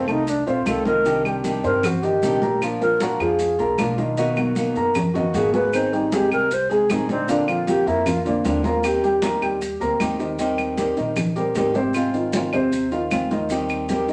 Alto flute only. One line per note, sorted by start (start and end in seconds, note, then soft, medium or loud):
0.09 0.31 D#4 loud
0.29 0.47 D4 medium
0.48 0.70 F4 medium
0.69 0.86 A4 medium
0.87 1.23 A#4 loud
1.65 1.88 A#4 medium
1.86 2.05 F#4 medium
2.03 2.62 G4 medium
2.81 3.04 A#4 loud
3.02 3.23 F#4 medium
3.21 3.79 G#4 medium
5.16 5.38 F#4 medium
5.37 5.54 G#4 medium
5.54 5.77 B4 medium
5.75 5.95 C5 medium
5.94 6.16 D#4 medium
6.14 6.32 G4 medium
6.33 6.55 A#4 medium
6.54 6.71 C5 medium
6.72 6.93 G#4 medium
6.92 7.10 D#4 medium
7.10 7.32 C4 medium
7.30 7.48 D4 medium
7.49 7.71 F4 medium
7.69 7.89 G4 loud
7.87 8.10 E4 medium
8.08 8.26 F4 loud
8.26 8.49 A#3 medium
8.47 8.65 D4 medium
8.65 8.87 F4 medium
8.86 9.24 G4 medium